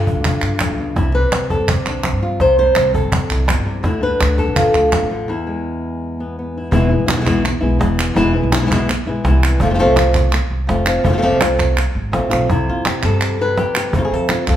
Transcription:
Already playing: G2 D3 F4 G4
0.07 cajon bass
0.15 D2
0.24 F4, cajon bass, clap
0.42 G2, clap
0.59 A2, cajon bass, cajon slap, clap
0.70 C#2
0.78 B2
0.96 C2 C3 E4, cajon bass, cajon slap
1.15 G3 B4
1.32 C2, cajon slap, clap
1.50 A4, cajon bass, cajon slap
1.59 G2
1.68 G4, cajon bass, clap
1.86 C2 D4, clap
2.04 cajon slap, clap
2.12 G2
2.23 F4
2.40 C2 C3 C5, cajon bass, cajon slap
2.58 G3 C5
2.75 C2 D4, cajon slap, clap
2.94 A4, cajon bass
3.03 G2
3.12 cajon bass, clap
3.30 C2 E4, clap
3.47 B2, cajon bass, cajon slap, clap
3.57 G2
3.66 C3
3.83 D2 D3 D4 E4, cajon bass, cajon slap
4.01 D4 B4, cajon slap
4.20 D2, cajon slap, clap
4.38 A4, cajon bass, cajon slap
4.48 A1
4.56 F4, cajon bass, clap
4.74 D2, clap
4.92 C3, cajon bass, cajon slap, clap
5.01 A1
5.11 D3
5.28 E2 E4
5.47 G#3
6.20 B3
6.39 B3
6.58 E4
6.71 E1 B2 E3 G#3 B3 E4, cajon bass
6.89 G#3 B3 E4
6.99 B1
7.06 G#3 B3 E4, cajon slap, clap
7.12 E3 G#3 B3 E4
7.16 E3 G#3 B3 E4
7.21 E3 G#3 B3 E4
7.25 B2 E3 G#3 B3 E4, cajon bass, clap
7.44 muted nylon-string guitar stroke, clap
7.61 B1 G#3 B3 E4
7.79 E1 E3 G#3 B3 E4, cajon slap
7.99 clap
8.14 E1 B2 E3 G#3 B3 E4, cajon bass, cajon slap
8.34 G#3 B3 E4
8.43 B1
8.52 G#3 B3 E4, cajon slap, clap
8.57 E3 B3 E4
8.62 E3 G#3 B3 E4
8.66 E3 G#3 B3 E4
8.70 B2 E3 G#3 B3 E4, cajon bass, clap
8.88 muted nylon-string guitar stroke, cajon slap, clap
9.06 B1 G#3 B3 E4
9.24 C2 E3 G#3 B3 E4, cajon slap
9.44 clap
9.60 F1 C3 F3 A3 C4 F4, cajon bass
9.70 F3 A3 C4 F4
9.74 F3 A3 C4 F4
9.79 C3 F3 A3 C4 F4
9.87 C2
9.96 A3 C4 F4, cajon slap, clap
10.15 cajon bass, clap
10.32 muted nylon-string guitar stroke, cajon slap, clap
10.50 C2
10.67 F1 F3 A3 C4 F4, cajon slap
10.86 A3 C4 F4, clap
11.04 F1 C3 F3 A3 C4 F4, cajon bass
11.08 F3 A3 C4 F4
11.13 F3 A3 C4 F4
11.18 F3 A3 C4 F4
11.22 C3 F3 A3 C4 F4
11.32 C2
11.41 A3 C4 F4, cajon slap, clap
11.59 cajon bass, cajon slap, clap
11.77 muted nylon-string guitar stroke, clap
11.95 G#1
12.12 A1 F3 A3 C4 F4, cajon slap
12.30 B1 A3 C4 F4, clap
12.49 C2 C3 E4, cajon bass, cajon slap
12.68 C3 F4
12.85 G4, cajon slap, clap
13.03 G2 G3 A4, cajon bass, cajon slap, clap
13.21 cajon slap, clap
13.41 C3 B4
13.57 G4, cajon slap
13.75 G4, clap
13.93 F2 F3 A3 C4 G#4, cajon bass
13.98 F4
14.05 G#4
14.12 F3 A4
14.29 F4, cajon slap, clap
14.47 C2 F3 A4, cajon bass, cajon slap, clap

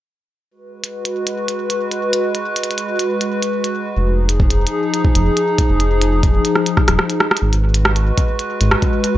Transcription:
0.51 G#3 F#4 B4
0.84 closed hi-hat
1.05 closed hi-hat
1.27 closed hi-hat
1.48 closed hi-hat
1.70 closed hi-hat
1.92 closed hi-hat
2.13 closed hi-hat
2.35 closed hi-hat
2.56 closed hi-hat
2.64 closed hi-hat
2.71 closed hi-hat
2.78 closed hi-hat
2.99 closed hi-hat
3.21 closed hi-hat
3.43 closed hi-hat
3.64 closed hi-hat
3.96 F1 F3 D#4 G#4
4.29 closed hi-hat
4.40 kick
4.50 closed hi-hat
4.67 closed hi-hat
4.94 closed hi-hat
5.05 kick
5.15 F1, closed hi-hat
5.37 closed hi-hat
5.58 kick, closed hi-hat
5.69 F1
5.80 closed hi-hat
6.02 closed hi-hat
6.23 kick, closed hi-hat
6.45 closed hi-hat
6.55 cross-stick
6.66 closed hi-hat
6.77 kick, cross-stick
6.88 D#1, cross-stick, closed hi-hat
6.99 cross-stick
7.10 closed hi-hat
7.20 cross-stick
7.31 cross-stick
7.37 closed hi-hat
7.42 G#1 G#3 F#4 B4
7.53 closed hi-hat
7.74 closed hi-hat
7.85 cross-stick
7.96 closed hi-hat
8.18 kick, closed hi-hat
8.39 closed hi-hat
8.61 G#1, closed hi-hat
8.71 cross-stick
8.82 kick, closed hi-hat
9.04 closed hi-hat
9.15 G#1

